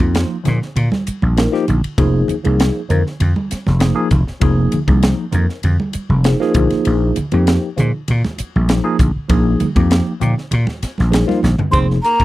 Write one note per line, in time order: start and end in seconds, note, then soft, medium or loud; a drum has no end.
0.00 0.23 F2 medium
0.00 0.35 F3 medium
0.00 0.36 A#3 medium
0.00 0.36 D#4 medium
0.00 0.36 F4 medium
0.00 kick medium
0.00 ride medium
0.00 high conga medium
0.15 snare loud
0.15 ride medium
0.44 0.59 A#2 loud
0.44 0.57 F3 medium
0.44 0.57 A#3 medium
0.44 0.57 D#4 medium
0.44 0.58 G#4 medium
0.44 snare soft
0.44 hi-hat pedal medium
0.44 ride medium
0.44 low conga medium
0.60 0.67 D#4 soft
0.60 snare soft
0.76 0.88 A#2 medium
0.76 ride medium
0.76 low conga medium
0.92 snare soft
0.92 high conga medium
1.07 muted slap bass stroke soft
1.07 hi-hat pedal medium
1.07 ride medium
1.22 1.46 A#1 medium
1.22 high conga medium
1.37 1.49 F3 medium
1.37 1.49 A#3 medium
1.37 1.50 D#4 medium
1.37 1.50 A#4 medium
1.37 snare loud
1.37 ride medium
1.52 1.64 F3 loud
1.52 1.64 A#3 loud
1.52 1.64 D#4 loud
1.52 1.65 G4 loud
1.52 snare soft
1.66 1.81 A#1 medium
1.66 1.74 D#4 soft
1.66 hi-hat pedal medium
1.66 ride medium
1.66 low conga medium
1.84 ride medium
1.97 2.22 F1 medium
1.97 2.34 F3 medium
1.97 2.34 A#3 medium
1.97 2.34 D#4 medium
1.97 2.34 G#4 loud
1.97 kick loud
1.97 ride medium
2.28 muted slap bass stroke soft
2.28 hi-hat pedal medium
2.28 ride medium
2.28 low conga medium
2.44 2.69 C2 medium
2.44 2.80 F3 medium
2.44 2.80 A#3 medium
2.44 2.81 D#4 medium
2.44 2.81 G#4 medium
2.44 ride medium
2.44 high conga medium
2.60 snare loud
2.60 ride medium
2.89 3.02 F2 loud
2.89 3.02 F3 medium
2.89 3.02 A#3 medium
2.89 3.02 D#4 medium
2.89 3.02 A#4 medium
2.89 hi-hat pedal medium
2.89 ride medium
2.89 low conga medium
3.04 3.12 D#4 soft
3.04 3.13 G#4 soft
3.04 snare soft
3.20 3.33 F2 medium
3.20 ride medium
3.20 low conga medium
3.36 high conga medium
3.51 muted slap bass stroke soft
3.51 snare soft
3.51 hi-hat pedal medium
3.51 ride medium
3.67 3.91 F1 medium
3.67 snare soft
3.67 high conga medium
3.79 3.93 F3 medium
3.79 3.93 A#3 medium
3.79 3.93 D#4 medium
3.79 3.93 G#4 medium
3.79 snare loud
3.79 ride medium
3.94 4.07 F3 loud
3.94 4.07 A#3 medium
3.94 4.08 D#4 medium
3.94 4.08 G#4 loud
4.11 4.24 F1 medium
4.11 kick medium
4.11 hi-hat pedal medium
4.11 ride medium
4.11 low conga medium
4.28 muted slap bass stroke soft
4.28 snare soft
4.40 4.65 F1 medium
4.40 4.77 F3 loud
4.40 4.78 A#3 medium
4.40 4.78 D#4 medium
4.40 4.78 G#4 loud
4.40 kick loud
4.40 ride medium
4.72 muted slap bass stroke soft
4.72 hi-hat pedal medium
4.72 ride medium
4.72 low conga medium
4.87 5.12 C2 medium
4.87 5.24 F3 medium
4.87 5.24 A#3 medium
4.87 5.24 D#4 medium
4.87 5.24 G#4 medium
4.87 kick medium
4.87 ride medium
4.87 high conga medium
5.03 snare loud
5.03 ride medium
5.31 5.46 F2 loud
5.31 5.45 F3 medium
5.31 5.45 A#3 medium
5.31 5.45 D#4 medium
5.31 5.46 A#4 medium
5.31 hi-hat pedal medium
5.31 ride medium
5.31 low conga medium
5.50 5.57 A#4 soft
5.50 snare soft
5.63 5.76 F2 medium
5.63 ride medium
5.63 low conga medium
5.80 high conga medium
5.93 muted slap bass stroke soft
5.93 hi-hat pedal medium
5.93 ride medium
6.09 6.33 F1 medium
6.09 high conga medium
6.24 6.37 F3 medium
6.24 6.37 A#3 medium
6.24 6.37 D#4 medium
6.24 6.38 G#4 medium
6.24 snare loud
6.24 ride medium
6.40 6.52 F3 loud
6.40 6.52 A#3 loud
6.40 6.53 D#4 loud
6.40 6.53 G#4 loud
6.40 snare soft
6.54 6.67 A#1 medium
6.54 7.16 F3 medium
6.54 7.16 A#3 medium
6.54 7.17 D#4 medium
6.54 7.17 G#4 medium
6.54 kick loud
6.54 hi-hat pedal medium
6.54 ride medium
6.54 low conga medium
6.70 muted slap bass stroke soft
6.70 snare soft
6.70 ride medium
6.85 7.10 A#1 medium
6.85 ride medium
7.16 muted slap bass stroke soft
7.16 hi-hat pedal medium
7.16 ride medium
7.16 low conga medium
7.32 7.56 F2 medium
7.32 7.68 F3 medium
7.32 7.68 A#3 medium
7.32 7.68 D#4 medium
7.32 7.69 G4 loud
7.32 ride medium
7.32 high conga medium
7.47 snare loud
7.47 ride medium
7.77 7.91 A#2 loud
7.77 7.90 F3 medium
7.77 7.90 A#3 medium
7.77 7.90 D#4 medium
7.77 7.90 G#4 medium
7.77 hi-hat pedal medium
7.77 ride medium
7.77 low conga medium
7.93 8.00 D#4 soft
7.93 8.01 F4 soft
8.08 8.21 A#2 medium
8.08 ride medium
8.08 low conga medium
8.25 snare soft
8.25 high conga medium
8.38 muted slap bass stroke soft
8.38 hi-hat pedal medium
8.38 ride medium
8.56 8.78 A#1 medium
8.56 high conga medium
8.68 8.81 F3 medium
8.68 8.81 A#3 medium
8.68 8.81 D#4 medium
8.68 8.81 G#4 medium
8.68 snare medium
8.68 ride medium
8.83 8.96 F3 loud
8.83 8.96 A#3 loud
8.83 8.96 D#4 loud
8.83 8.96 G#4 loud
8.99 9.11 A#1 medium
8.99 kick medium
8.99 hi-hat pedal medium
8.99 ride medium
8.99 low conga medium
9.16 muted slap bass stroke soft
9.28 9.53 A#1 medium
9.28 9.65 F3 medium
9.28 9.66 A#3 medium
9.28 9.66 D#4 medium
9.28 9.66 G#4 loud
9.28 kick loud
9.28 ride medium
9.60 muted slap bass stroke soft
9.60 hi-hat pedal medium
9.60 ride medium
9.60 high conga medium
9.60 low conga medium
9.76 10.00 F2 medium
9.76 10.12 F3 medium
9.76 10.12 A#3 medium
9.76 10.12 D#4 medium
9.76 10.12 G4 medium
9.76 kick medium
9.76 ride medium
9.76 high conga medium
9.91 snare loud
9.91 ride medium
10.20 10.34 A#2 medium
10.20 10.33 F3 medium
10.20 10.33 A#3 medium
10.20 10.34 D#4 medium
10.20 10.34 G4 medium
10.20 hi-hat pedal medium
10.20 ride medium
10.20 low conga medium
10.38 snare soft
10.51 10.65 A#2 medium
10.51 ride medium
10.51 low conga medium
10.67 snare soft
10.67 high conga medium
10.83 muted slap bass stroke soft
10.83 snare soft
10.83 hi-hat pedal medium
10.83 ride medium
10.98 11.23 A#1 medium
10.98 snare soft
10.98 high conga medium
11.10 11.24 F3 medium
11.10 11.24 A#3 medium
11.10 11.24 D#4 medium
11.10 11.25 G#4 medium
11.10 ride medium
11.10 high conga medium
11.14 snare medium
11.27 11.39 F3 loud
11.27 11.40 A#3 medium
11.27 11.40 D#4 medium
11.27 11.40 F4 loud
11.27 snare soft
11.27 high conga medium
11.41 11.56 A#1 medium
11.41 11.50 D#4 soft
11.41 11.50 G4 soft
11.41 snare medium
11.41 hi-hat pedal medium
11.41 low conga medium
11.58 muted slap bass stroke soft
11.58 floor tom medium
11.58 low conga medium
11.70 11.97 F1 medium
11.70 11.96 F3 medium
11.70 11.97 A#3 medium
11.70 11.87 C4 medium
11.70 11.97 D#4 medium
11.70 11.97 G#4 medium
11.70 11.79 C6 medium
11.70 kick loud
11.70 hi-hat pedal medium
11.70 ride medium
11.91 snare soft
12.03 12.24 A#3 medium
12.03 12.11 D#4 soft
12.03 12.12 G#4 soft
12.03 12.24 A#5 loud
12.03 hi-hat pedal medium
12.03 ride soft
12.20 12.24 D#2 medium
12.20 kick medium
12.20 ride soft